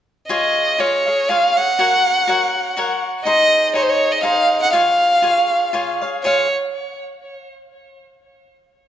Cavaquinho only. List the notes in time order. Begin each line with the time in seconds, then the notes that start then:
0.29 F4 G#4 C#5 F5
0.78 F4 G#4 C#5 F5
1.07 G#4 C#5 F5
1.29 F4 G#4 C#5 F5
1.57 G#4 C#5 F5
1.79 F#4 A#4 C#5 F#5
2.27 F#4 A#4 C#5 F#5
2.77 F#4 A#4 C#5 F#5
3.25 D#4 G#4 C5 D#5
3.74 D#4 G#4 C5 D#5
4.23 D#4 G#4 C5 D#5
4.73 F4 G#4 C#5 F5
5.22 F4 G#4 C#5 F5
5.73 F4 G#4 C#5 F5
6.01 G#4 C#5 F5
6.24 F4 G#4 C#5 F5